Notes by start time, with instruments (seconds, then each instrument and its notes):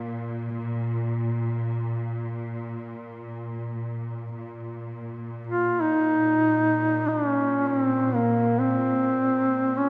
Already playing: string section A#2
4.35 string section A#2
5.47 duduk F4
5.81 duduk D#4
7.08 duduk D4
7.27 duduk C#4
7.67 duduk C#4
7.80 duduk C4
8.15 duduk A#3
8.59 duduk C4
9.77 duduk C#4